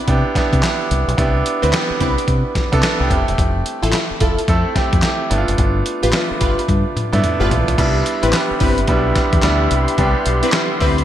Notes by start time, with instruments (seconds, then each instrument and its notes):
Already playing: grand piano B3 D4 E4 G4
0.08 fingered electric bass C3, grand piano B3 D4 E4 G4, kick, closed hi-hat
0.35 grand piano B3 D4 E4 G4, muted fingered electric bass stroke, kick, snare, closed hi-hat
0.53 fingered electric bass C3, kick, closed hi-hat
0.63 grand piano B3 D4 E4 G4, snare, clap, closed hi-hat
0.91 fingered electric bass C2, closed hi-hat
1.08 fingered electric bass B1, closed hi-hat
1.17 fingered electric bass C2, grand piano B3 D4 E4 G4, kick, closed hi-hat
1.46 closed hi-hat
1.62 fingered electric bass D2, analog polysynth C4 E4 B4, closed hi-hat
1.73 grand piano B3 D4 E4 G4, snare, clap, closed hi-hat
1.91 muted fingered electric bass stroke
2.00 fingered electric bass C2, analog polysynth C4 E4 B4, kick, closed hi-hat
2.18 closed hi-hat
2.28 fingered electric bass C3, kick, closed hi-hat
2.55 muted fingered electric bass stroke, kick, snare, closed hi-hat
2.72 fingered electric bass C3, grand piano B3 D4 E4 A4, kick, closed hi-hat
2.83 snare, clap, closed hi-hat
3.00 fingered electric bass C2, grand piano B3 D4 E4 G4
3.10 fingered electric bass F1, grand piano G3 C4 E4 G4, kick, closed hi-hat
3.17 grand piano A3
3.28 fingered electric bass E1, closed hi-hat
3.38 fingered electric bass F1, kick, closed hi-hat
3.66 closed hi-hat
3.82 fingered electric bass A1, analog polysynth E4 F4 A4, closed hi-hat
3.93 snare, clap, closed hi-hat
4.11 muted fingered electric bass stroke
4.20 fingered electric bass F1, analog polysynth E4 F4 A4, kick, closed hi-hat
4.38 closed hi-hat
4.48 fingered electric bass F2, grand piano A3 C4 E4 A4, kick, closed hi-hat
4.75 grand piano A3 C4 E4 G4, muted fingered electric bass stroke, kick, snare, closed hi-hat
4.93 fingered electric bass F2, kick, closed hi-hat
5.02 grand piano A3 C4 E4 G4, snare, clap, closed hi-hat
5.30 fingered electric bass G1, grand piano A3 B3 D4 E4, closed hi-hat
5.38 grand piano F4
5.48 fingered electric bass F#1, closed hi-hat
5.58 fingered electric bass G1, kick, closed hi-hat
5.86 closed hi-hat
6.03 fingered electric bass A1, analog polysynth F4 G4 B4, closed hi-hat
6.13 grand piano A3 B3 D4 F4, snare, clap, closed hi-hat
6.31 muted fingered electric bass stroke
6.40 fingered electric bass G1, analog polysynth F4 G4 B4, kick, closed hi-hat
6.59 closed hi-hat
6.68 fingered electric bass G2, kick, closed hi-hat, high tom
6.96 muted fingered electric bass stroke, closed hi-hat, mid tom
7.12 fingered electric bass G2, grand piano A3 B3 D4 E4, closed hi-hat, mid tom
7.24 closed hi-hat, mid tom
7.40 fingered electric bass G1, grand piano A3 B3 D4 F4, analog polysynth F4 G4 B4
7.51 fingered electric bass A#1, closed hi-hat, floor tom
7.68 fingered electric bass B1, closed hi-hat, floor tom
7.77 fingered electric bass C2, grand piano G3 B3 D4 E4, analog synth pad G4 E5 B5 C6, kick, closed hi-hat, crash
8.06 closed hi-hat
8.23 fingered electric bass A1, analog polysynth C4 E4 B4, closed hi-hat
8.33 grand piano G3 B3 D4 G4, snare, clap, closed hi-hat
8.51 muted fingered electric bass stroke
8.60 fingered electric bass G1, analog polysynth C4 E4 B4, kick, open hi-hat
8.78 closed hi-hat
8.87 fingered electric bass B1, grand piano G3 B3 D4 E4, kick, closed hi-hat
9.16 kick, snare, closed hi-hat
9.33 fingered electric bass E2, kick, closed hi-hat
9.42 fingered electric bass D2, grand piano G3 B3 D4 E4, snare, clap, closed hi-hat
9.71 fingered electric bass C2, closed hi-hat
9.88 closed hi-hat
9.98 fingered electric bass C2, grand piano G3 B3 D4 G4, kick, closed hi-hat
10.26 fingered electric bass B1, closed hi-hat
10.43 analog polysynth C4 E4 B4, closed hi-hat
10.52 grand piano G3 B3 D4 E4, snare, clap, closed hi-hat
10.80 fingered electric bass D2, analog polysynth C4 E4 B4, kick, open hi-hat
10.98 closed hi-hat